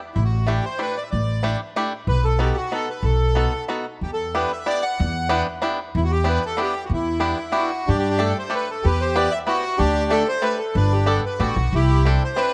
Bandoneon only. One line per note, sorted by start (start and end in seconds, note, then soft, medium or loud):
0.15 0.23 E4 medium
0.24 0.49 F#4 medium
0.48 0.65 G4 medium
0.65 0.81 C5 medium
0.81 0.97 B4 medium
0.97 1.03 D5 medium
1.03 1.10 E5 medium
1.11 1.57 D5 medium
2.09 2.25 B4 loud
2.24 2.39 A4 medium
2.41 2.57 G4 medium
2.57 2.72 F#4 medium
2.74 2.89 A4 medium
2.90 3.05 B4 medium
3.04 3.65 A4 medium
4.03 4.11 G4 medium
4.13 4.37 A4 medium
4.36 4.52 B4 medium
4.52 4.68 E5 medium
4.67 4.83 D5 loud
4.82 5.42 F#5 medium
5.96 6.04 E4 medium
6.04 6.11 F#4 medium
6.11 6.27 G4 medium
6.29 6.44 B4 medium
6.46 6.60 A4 medium
6.62 6.85 G4 medium
6.85 6.92 F#4 medium
6.94 7.70 E4 medium
7.55 7.89 F#4 medium
7.87 8.33 D4 medium
7.87 7.97 G4 medium
7.99 8.09 G4 medium
8.10 8.21 G4 medium
8.21 8.37 A4 medium
8.39 8.54 C5 medium
8.55 8.70 B4 medium
8.70 8.86 A4 medium
8.84 9.28 G4 medium
8.84 9.01 B4 medium
9.01 9.17 C5 medium
9.16 9.32 D5 medium
9.32 9.39 E5 loud
9.47 9.80 F#4 loud
9.78 10.23 D4 medium
9.78 10.11 G4 loud
10.12 10.28 A4 loud
10.28 10.44 C5 loud
10.43 10.59 B4 loud
10.59 10.75 A4 medium
10.75 11.21 D4 medium
10.75 10.92 B4 medium
10.93 11.08 G4 medium
11.10 11.17 A4 medium
11.26 11.42 B4 medium
11.41 11.75 F#4 medium
11.75 12.20 E4 medium
11.75 12.08 G4 medium
12.06 12.23 A4 medium
12.24 12.40 C5 medium
12.37 12.54 B4 loud